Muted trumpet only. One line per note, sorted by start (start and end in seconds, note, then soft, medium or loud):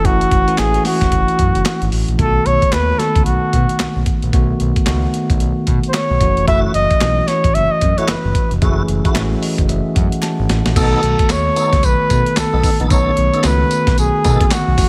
0.05 0.60 F#4 loud
0.59 0.85 G#4 medium
0.86 1.89 F#4 medium
2.19 2.47 A4 loud
2.46 2.74 C#5 loud
2.73 3.00 B4 loud
2.98 3.24 A4 loud
3.25 4.02 F#4 medium
5.89 5.96 C5 medium
5.94 6.47 C#5 medium
6.48 6.60 E5 loud
6.74 7.29 D#5 loud
7.27 7.56 C#5 medium
7.54 7.73 E5 loud
7.71 7.99 D#5 loud
7.98 8.11 C#5 medium
8.09 8.52 B4 medium
10.78 11.33 A4 medium
11.31 11.86 C#5 loud
11.85 12.40 B4 loud
12.38 12.80 A4 medium
12.92 13.48 C#5 loud
13.46 13.98 B4 loud
13.99 14.54 G#4 medium
14.53 14.89 F#4 medium